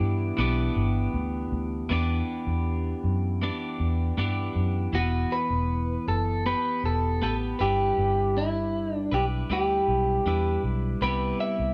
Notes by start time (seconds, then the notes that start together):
Already playing: E3 B3 D4 E4 G4
0.00 G2
0.37 B1 E3 B3 D4 G4
0.76 G1
1.14 D2
1.52 D2
1.89 E2 E3 B3 D4 G4
2.47 E2
3.04 F#2
3.42 E3 B3 D4 G4
3.80 E2
4.17 G2 E3 B3 D4 G4
4.56 F#2
4.93 E1 E3 B3 F#4 B4
5.32 B4
5.50 E1
6.07 F#1 A4
6.46 B3 G4 B4
6.83 E1 A4
7.22 A1 B3 G4 A4 B4
7.59 G1 G3 D4 E4 G4 B4
7.98 G1
8.38 E4
8.95 D4
9.12 B1 D4 E4 G4 B4
9.50 D2 G3 D4 E4 G4 B4
9.88 B1
10.26 E2 G3 D4 E4 B4
10.63 B1
11.01 C2 C3 G3 B3 E4 G4 B4
11.40 E5
11.59 C2